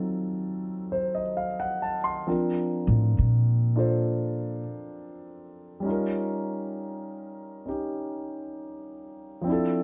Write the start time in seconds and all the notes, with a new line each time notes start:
Already playing: F#3 C4 D#4 F4 A4
0.92 C5
1.15 D#5
1.37 F5
1.60 F#5
1.82 A5
2.04 C6
2.27 F3 C4 D4 F4 A#4
2.87 A2
3.18 A#2
3.76 D4 F4 A4 C5
5.80 G3 C#4
5.85 D#4 F4
5.91 A#4
7.66 C#4 D#4 G4
9.41 F3 C4
9.47 D4 E4
9.52 A4